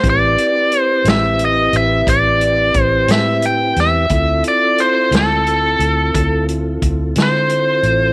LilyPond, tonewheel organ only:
\new Staff \with { instrumentName = "Tonewheel organ" } { \time 12/8 \key a \minor \tempo 4. = 59 <c' e' g' b'>1. | <c' e' f' a'>1. | }